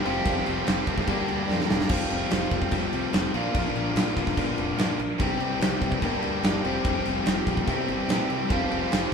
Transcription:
0.03 F1 F3 G3 C4 F4 G4 C5 F5 G5, crash
0.24 F1 F3 G3 C4 F4 G4, kick, crash
0.46 F1 F3 G3 C4 F4 G4, crash
0.65 F1 F3 G3 C4 F4 G4 C5 F5 G5, snare, crash
0.86 F1 F3 G3 C4 F4 G4, kick, crash
0.98 kick, snare
1.07 G1 G2 D3 G3 A#3 D4 G4 A#4 D5 G5, kick, crash
1.27 D2 G2 D3 G3 A#3 D4, crash
1.48 F2 G2 D3 G3 A#3 D4 G4 A#4 D5 G5, snare
1.60 snare
1.68 E1 G2 D3 G3 A#3 D4 G4, snare
1.81 snare
1.88 F1 F3 G3 C4 F4 G4 C5 F5, kick, crash
2.10 F1 C4 F4 G4, crash
2.30 F1 F3 C4 F4 G4 C5 F5, snare, crash
2.51 F1 C4 F4 G4, kick, crash
2.62 kick
2.71 F1 F3 C4 F4 G4 C5 G5, kick, crash
2.92 C2, crash
3.13 F1 F3 C4 F4 G4 C5 F5, snare, crash
3.33 A#1 A#2 D3 F3 A#3 D4 F4 A#4 D5 F5, crash
3.54 A#1 A#2 D3 F3 A#3 D4 A#4, kick, crash
3.74 A#1 F3 A#3 D4 A#4, crash
3.96 A#1 A#2 D3 F3 A#3 D4 F4 A#4 D5 F5, snare, crash
4.16 A#1 F3 A#3 D4 A#4, kick, crash
4.27 kick, snare
4.37 G1 F3 A#3 D4 F4 A#4 D5 F5, kick, crash
4.57 F1, crash
4.77 G2 A#2 D3 F3 A#3 D4 F4 A#4 D5 F5, snare, crash
4.98 A#1 F3 A#3 D4 A#4, crash
5.19 C2 C3 E3 G3 C4 E4 G4 C5 E5 G5, kick, crash
5.40 C2 C4 E4 G4, crash
5.60 C2 C3 G3 C4 E4 G4 C5 E5 G5, snare, crash
5.81 C2 C4 E4 G4, kick, crash
5.92 kick
6.01 G1 G2 D3 G3 A#3 D4 G4 A#4 D5 G5, kick, crash
6.22 D2, crash
6.43 G1 G2 D3 G3 A#3 D4 G4 A#4 D5 G5, snare, crash
6.63 F1 F3 G3 C4 F4 G4 C5 F5 G5, crash
6.85 F1 F3 C4 F4 G4, kick, crash
7.05 F1 C4 F4 G4, crash
7.25 F1 F3 C4 F4 G4 C5 F5 G5, snare, crash
7.46 A#1 C4 F4 G4, kick, crash
7.57 kick
7.67 C2 C3 E3 G3 C4 E4 G4 C5 E5 G5, kick, crash
7.88 G1, crash
8.08 A#2 C3 G3 C4 E4 G4 C5 E5 G5, snare, crash
8.29 C3 C4 E4 G4, crash
8.49 F1 F3 G3 C4 F4 G4 C5 F5 G5, kick, crash
8.70 F1 F3 G3 C4 F4 G4, crash
8.91 F1 F3 G3 C4 F4 G4 C5 F5 G5, snare, crash

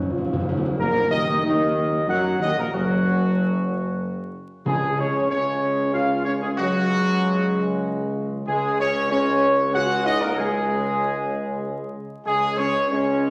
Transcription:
Already playing: C#4
0.02 F#2
0.10 F#2 F4
0.18 F#2
0.25 F#2
0.33 F#2
0.41 F#2
0.46 F#2 F#4
0.57 F#2
0.65 F#2
0.77 A#1 A#2 A#3 A#4
1.11 D#2 D#3 D#4 D#5
1.44 D#2 D#3 D#4 D#5
2.08 F#2 F#3 F#4 F#5
2.40 D#2 D#3 D#4 D#5
2.56 A#1 A#2 A#3 A#4
2.72 F#1 F#2 F#3 F#4
4.66 C#2 C#3 G#3 G#4
4.98 C#4 C#5
5.30 C#3 G#3 C#4 C#5
5.93 F4 F5
6.25 C#4 C#5
6.41 G#3 G#4
6.57 C#3 F#3 G#3 F#4
8.47 C#2 C#3 G#3 G#4
8.80 C#4 C#5
9.10 C#3 G#3 C#4 C#5
9.74 C#3 G#3 F#4 F#5
10.06 D#4 D#5
10.21 A#3 A#4
10.36 C#3 G#3 G#4
12.26 C#2 C#3 G#3 G#4
12.58 C#4 C#5
12.90 C#3 G#3 C#4 C#5

